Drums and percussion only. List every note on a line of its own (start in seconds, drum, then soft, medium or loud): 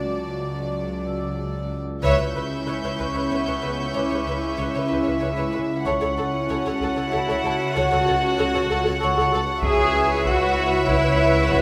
2.03 taiko soft
2.99 taiko soft
5.86 taiko soft
6.81 taiko soft
9.63 taiko medium
10.25 taiko medium
10.88 taiko medium
11.51 taiko medium